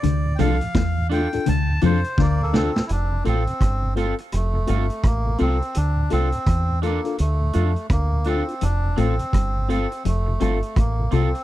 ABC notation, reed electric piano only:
X:1
M:4/4
L:1/16
Q:"Swing 16ths" 1/4=84
K:F
V:1 name="Reed electric piano"
z2 [DFA] z3 [DFA] [DFA] z2 [DFA] z3 [DFA] z | z2 [CFA] z3 [CFA] z2 [FA] [CFA] z2 [FA] [CFA] z | z2 [DFA] z3 [DFA] [DFA] z2 [DFA] z3 [DFA] z | z2 [CFA] z3 [CFA] z2 [FA] [CFA] z2 [FA] [CFA] z |]